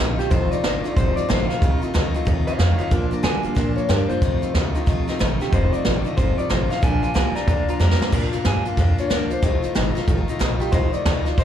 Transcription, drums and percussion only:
0.20 snare, closed hi-hat
0.31 kick, closed hi-hat
0.52 closed hi-hat
0.64 snare, closed hi-hat
0.85 closed hi-hat
0.97 kick, closed hi-hat
1.17 closed hi-hat
1.30 snare, closed hi-hat
1.50 snare, closed hi-hat
1.62 kick, closed hi-hat
1.82 closed hi-hat
1.94 snare, closed hi-hat
2.15 closed hi-hat
2.27 kick, closed hi-hat
2.47 closed hi-hat
2.59 snare, closed hi-hat
2.79 closed hi-hat
2.91 kick, closed hi-hat
3.12 closed hi-hat
3.24 snare, closed hi-hat
3.44 closed hi-hat
3.56 kick, snare, closed hi-hat
3.78 closed hi-hat
3.89 snare, closed hi-hat
4.10 closed hi-hat
4.22 kick, closed hi-hat
4.42 closed hi-hat
4.54 snare, closed hi-hat
4.75 closed hi-hat
4.87 kick, snare, closed hi-hat
5.08 snare, closed hi-hat
5.20 snare, closed hi-hat
5.41 snare, closed hi-hat
5.52 kick, closed hi-hat
5.73 closed hi-hat
5.85 snare, closed hi-hat
6.06 closed hi-hat
6.18 kick, closed hi-hat
6.39 closed hi-hat
6.50 snare, closed hi-hat
6.71 snare, closed hi-hat
6.83 kick, closed hi-hat
7.03 closed hi-hat
7.15 snare, closed hi-hat
7.36 snare, closed hi-hat
7.47 kick, closed hi-hat
7.68 closed hi-hat
7.80 snare
7.91 snare
8.02 snare
8.13 kick, crash
8.33 closed hi-hat
8.45 snare, closed hi-hat
8.65 closed hi-hat
8.77 kick, snare, closed hi-hat
8.98 closed hi-hat
9.10 snare, closed hi-hat
9.31 closed hi-hat
9.43 kick, closed hi-hat
9.63 closed hi-hat
9.75 snare, closed hi-hat
9.96 snare, closed hi-hat
10.08 kick, closed hi-hat
10.29 closed hi-hat
10.40 snare, closed hi-hat
10.61 closed hi-hat
10.73 kick, closed hi-hat
10.93 closed hi-hat
11.05 snare, closed hi-hat
11.26 snare, closed hi-hat
11.38 kick, closed hi-hat

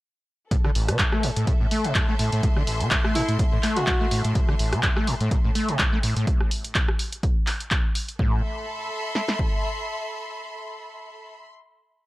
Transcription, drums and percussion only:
0.51 kick, closed hi-hat
0.65 cross-stick
0.75 open hi-hat
0.88 cross-stick, closed hi-hat
0.99 kick, clap, closed hi-hat
1.12 cross-stick
1.23 open hi-hat
1.36 closed hi-hat
1.47 kick, closed hi-hat
1.71 open hi-hat
1.84 closed hi-hat
1.95 kick, clap, closed hi-hat
2.19 open hi-hat
2.32 closed hi-hat
2.43 kick, closed hi-hat
2.57 cross-stick
2.67 open hi-hat
2.80 closed hi-hat
2.91 kick, clap, closed hi-hat
3.04 cross-stick
3.15 open hi-hat
3.29 closed hi-hat
3.39 kick, closed hi-hat
3.63 clap, open hi-hat
3.77 closed hi-hat
3.87 kick, clap, closed hi-hat
4.11 open hi-hat
4.25 closed hi-hat
4.35 kick, closed hi-hat
4.49 cross-stick
4.59 open hi-hat
4.73 cross-stick, closed hi-hat
4.83 kick, clap, closed hi-hat
4.97 cross-stick
5.07 open hi-hat
5.21 closed hi-hat
5.31 kick, closed hi-hat
5.55 open hi-hat
5.69 closed hi-hat
5.79 kick, clap, closed hi-hat
6.03 open hi-hat
6.17 closed hi-hat
6.27 kick, closed hi-hat
6.41 cross-stick
6.51 open hi-hat
6.64 closed hi-hat
6.75 kick, clap, closed hi-hat
6.88 cross-stick
6.99 open hi-hat
7.12 closed hi-hat
7.23 kick, closed hi-hat
7.47 clap, open hi-hat
7.60 closed hi-hat
7.71 kick, clap, closed hi-hat
7.95 open hi-hat
8.08 closed hi-hat
8.19 kick
9.15 snare
9.28 snare
9.39 kick

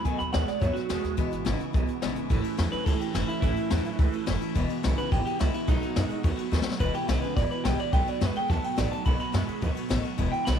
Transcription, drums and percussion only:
0.05 kick, closed hi-hat
0.20 closed hi-hat
0.34 snare, closed hi-hat
0.48 snare, closed hi-hat
0.62 kick, snare, closed hi-hat
0.76 snare, closed hi-hat
0.90 snare, closed hi-hat
1.04 snare, closed hi-hat
1.18 kick, closed hi-hat
1.32 closed hi-hat
1.46 snare, closed hi-hat
1.60 closed hi-hat
1.74 kick, closed hi-hat
1.89 closed hi-hat
2.02 snare, closed hi-hat
2.16 closed hi-hat
2.30 kick, ride
2.44 ride
2.58 snare, ride
2.73 ride
2.86 kick, ride
3.01 ride
3.15 snare, ride
3.29 ride
3.42 kick, ride
3.57 ride
3.70 snare, ride
3.85 ride
3.99 kick, snare, ride
4.13 ride
4.27 snare, ride
4.41 ride
4.56 kick, ride
4.70 ride
4.84 snare, ride
4.98 ride
5.12 kick, snare, ride
5.26 ride
5.40 snare, ride
5.54 ride
5.68 kick, ride
5.82 ride
5.96 snare, ride
6.10 ride
6.24 kick, ride
6.38 ride
6.53 snare
6.62 snare
6.71 snare
6.80 kick, ride
6.94 ride
7.09 snare, ride
7.23 ride
7.37 kick, snare, ride
7.51 ride
7.65 snare, ride
7.79 ride
7.92 kick, ride
8.07 ride
8.21 snare, ride
8.36 ride
8.50 kick, snare, ride
8.64 ride
8.78 snare, ride
8.92 ride
9.06 kick, ride
9.20 ride
9.34 snare, ride
9.48 ride
9.62 kick, ride
9.76 ride
9.90 snare, ride
10.04 ride
10.19 kick, ride
10.33 ride
10.47 snare, ride

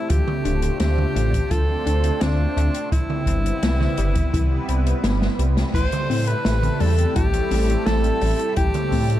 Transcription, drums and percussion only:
0.10 kick, closed hi-hat
0.28 mid tom
0.45 closed hi-hat
0.62 closed hi-hat
0.80 snare, closed hi-hat
0.98 mid tom
1.16 closed hi-hat
1.33 kick, closed hi-hat
1.51 kick, closed hi-hat
1.87 closed hi-hat
2.04 closed hi-hat
2.21 snare, closed hi-hat
2.58 closed hi-hat
2.74 closed hi-hat
2.92 kick, closed hi-hat
3.10 mid tom
3.26 kick, closed hi-hat
3.46 closed hi-hat
3.63 snare, closed hi-hat
3.81 snare, mid tom
3.98 closed hi-hat
4.15 kick, closed hi-hat
4.34 kick, closed hi-hat
4.69 closed hi-hat
4.87 closed hi-hat
5.04 snare, closed hi-hat, high tom
5.22 snare
5.39 closed hi-hat
5.57 snare, closed hi-hat
5.74 kick, closed hi-hat, crash
5.92 closed hi-hat, mid tom
6.11 open hi-hat
6.27 closed hi-hat
6.45 snare, closed hi-hat
6.63 closed hi-hat, mid tom
6.80 open hi-hat
6.98 closed hi-hat
7.16 kick, closed hi-hat
7.34 closed hi-hat
7.51 open hi-hat
7.70 closed hi-hat
7.86 snare, closed hi-hat
8.04 closed hi-hat
8.21 open hi-hat
8.39 closed hi-hat
8.56 kick, closed hi-hat
8.74 closed hi-hat, mid tom
8.92 kick, open hi-hat
9.10 closed hi-hat

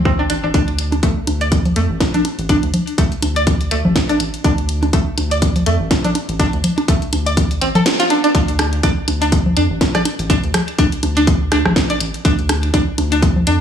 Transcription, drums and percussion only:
0.05 kick
0.30 closed hi-hat
0.54 kick, closed hi-hat
0.68 closed hi-hat
0.79 closed hi-hat
0.92 closed hi-hat, low bongo
1.03 kick, closed hi-hat
1.27 closed hi-hat, low bongo
1.41 closed hi-hat
1.52 kick, closed hi-hat
1.65 closed hi-hat, low conga
1.76 closed hi-hat
2.00 kick, snare, closed hi-hat
2.14 closed hi-hat, low conga
2.25 closed hi-hat, low bongo
2.39 closed hi-hat
2.49 kick, closed hi-hat
2.63 closed hi-hat
2.74 closed hi-hat, low conga
2.87 closed hi-hat
2.98 kick, closed hi-hat
3.12 closed hi-hat
3.22 closed hi-hat, low bongo
3.36 closed hi-hat
3.47 kick, closed hi-hat
3.61 closed hi-hat
3.71 closed hi-hat
3.85 low conga
3.96 kick, snare, closed hi-hat
4.09 closed hi-hat
4.20 closed hi-hat
4.34 closed hi-hat
4.44 kick, closed hi-hat
4.58 closed hi-hat
4.69 closed hi-hat
4.83 closed hi-hat, low bongo
4.93 kick, closed hi-hat
5.18 closed hi-hat, low bongo
5.31 closed hi-hat
5.42 kick, closed hi-hat
5.56 closed hi-hat, low conga
5.66 closed hi-hat
5.91 kick, snare, closed hi-hat
6.04 closed hi-hat, low conga
6.15 closed hi-hat, low bongo
6.29 closed hi-hat
6.40 kick, closed hi-hat
6.53 closed hi-hat
6.64 closed hi-hat, low conga
6.78 closed hi-hat, low bongo
6.88 kick, closed hi-hat
7.02 closed hi-hat
7.13 closed hi-hat, low bongo
7.26 closed hi-hat
7.37 kick, closed hi-hat
7.51 closed hi-hat
7.61 closed hi-hat
7.75 closed hi-hat, low conga
7.86 snare, closed hi-hat
8.00 closed hi-hat
8.10 closed hi-hat
8.24 closed hi-hat
8.35 kick, closed hi-hat
8.48 closed hi-hat
8.59 cross-stick, closed hi-hat, low bongo
8.73 closed hi-hat
8.83 kick, closed hi-hat
9.08 closed hi-hat, low bongo
9.22 closed hi-hat
9.32 kick, closed hi-hat
9.46 low conga
9.57 closed hi-hat
9.81 kick, snare, closed hi-hat
9.95 cross-stick, closed hi-hat, low conga
10.05 closed hi-hat, low bongo
10.19 closed hi-hat
10.30 kick, closed hi-hat
10.44 closed hi-hat
10.54 cross-stick, closed hi-hat, low conga
10.68 closed hi-hat
10.79 kick, closed hi-hat
10.92 closed hi-hat
11.03 closed hi-hat, low bongo
11.17 closed hi-hat
11.27 kick, closed hi-hat
11.52 cross-stick, closed hi-hat
11.65 cross-stick, low conga
11.76 kick, snare, closed hi-hat
11.90 closed hi-hat
12.00 closed hi-hat
12.14 closed hi-hat
12.25 kick, closed hi-hat
12.39 closed hi-hat
12.49 cross-stick, closed hi-hat, low bongo
12.63 closed hi-hat
12.74 kick, closed hi-hat
12.98 closed hi-hat, low bongo
13.12 closed hi-hat
13.22 kick, closed hi-hat
13.36 low conga
13.47 closed hi-hat

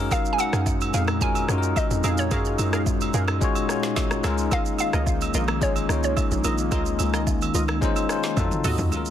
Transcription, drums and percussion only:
0.11 kick, high agogo, shaker
0.25 shaker
0.38 high agogo, shaker
0.53 cross-stick, shaker
0.66 kick, low woodblock, shaker
0.81 high agogo, shaker
0.94 shaker
1.07 cross-stick, high agogo
1.21 kick, shaker
1.35 high agogo, shaker
1.49 cross-stick, shaker
1.63 shaker
1.76 kick, high agogo, low woodblock, shaker
1.91 shaker
2.04 high agogo, shaker
2.18 shaker
2.31 kick, high agogo, shaker
2.45 shaker
2.58 high agogo, shaker
2.73 cross-stick, shaker
2.86 kick, low woodblock, shaker
3.01 high agogo, shaker
3.14 shaker
3.28 cross-stick, high agogo
3.41 kick, shaker
3.55 high agogo, shaker
3.69 cross-stick, shaker
3.83 snare, shaker
3.96 kick, snare, high agogo, low woodblock, shaker
4.11 cross-stick, shaker
4.24 cross-stick, snare, high agogo, shaker
4.38 shaker
4.51 kick, high agogo, shaker
4.66 shaker
4.78 high agogo, shaker
4.93 cross-stick, shaker
5.06 kick, low woodblock, shaker
5.21 high agogo, shaker
5.34 shaker
5.48 cross-stick, high agogo
5.62 kick, shaker
5.76 high agogo, shaker
5.89 cross-stick, shaker
6.03 shaker
6.17 kick, high agogo, low woodblock, shaker
6.31 shaker
6.44 high agogo, shaker
6.58 shaker
6.72 kick, high agogo, shaker
6.86 shaker
6.99 high agogo, shaker
7.14 cross-stick, shaker
7.27 kick, low woodblock, shaker
7.42 high agogo, shaker
7.54 shaker
7.68 cross-stick, high agogo
7.82 kick, shaker
7.96 high agogo, shaker
8.09 cross-stick, shaker
8.24 snare, shaker
8.37 kick, high tom, high agogo, low woodblock, shaker
8.51 mid tom, shaker
8.64 mid tom, open hi-hat, high agogo, shaker
8.78 floor tom, shaker
8.92 high agogo, shaker
9.05 shaker

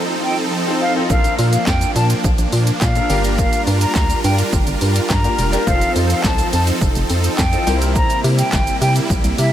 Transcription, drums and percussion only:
1.10 kick, shaker
1.24 closed hi-hat, shaker
1.39 open hi-hat, shaker
1.53 closed hi-hat, shaker
1.67 kick, snare, clap, shaker
1.81 closed hi-hat, shaker
1.96 open hi-hat, shaker
2.10 closed hi-hat, shaker
2.24 kick, shaker
2.38 closed hi-hat, shaker
2.52 open hi-hat, shaker
2.67 closed hi-hat, shaker
2.81 kick, snare, clap, shaker
2.95 closed hi-hat, shaker
3.10 open hi-hat, shaker
3.24 closed hi-hat, shaker
3.38 kick, shaker
3.53 closed hi-hat, shaker
3.67 open hi-hat, shaker
3.81 closed hi-hat, shaker
3.95 kick, snare, clap, shaker
4.10 closed hi-hat, shaker
4.24 open hi-hat, shaker
4.38 closed hi-hat, shaker
4.53 kick, shaker
4.67 closed hi-hat, shaker
4.81 open hi-hat, shaker
4.96 closed hi-hat, shaker
5.10 kick, snare, clap, shaker
5.24 closed hi-hat, shaker
5.39 open hi-hat, shaker
5.53 closed hi-hat, shaker
5.67 kick, shaker
5.81 closed hi-hat, shaker
5.96 open hi-hat, shaker
6.10 closed hi-hat, shaker
6.24 kick, snare, clap, shaker
6.38 closed hi-hat, shaker
6.53 open hi-hat, shaker
6.67 closed hi-hat, shaker
6.81 kick, shaker
6.95 closed hi-hat, shaker
7.10 open hi-hat, shaker
7.24 closed hi-hat, shaker
7.38 kick, snare, clap, shaker
7.53 closed hi-hat, shaker
7.67 open hi-hat, shaker
7.81 closed hi-hat, shaker
7.96 kick, shaker
8.10 closed hi-hat, shaker
8.24 open hi-hat, shaker
8.38 closed hi-hat, shaker
8.53 kick, snare, clap, shaker
8.67 closed hi-hat, shaker
8.81 open hi-hat, shaker
8.96 closed hi-hat, shaker
9.10 kick, shaker
9.24 closed hi-hat, shaker
9.38 open hi-hat, shaker

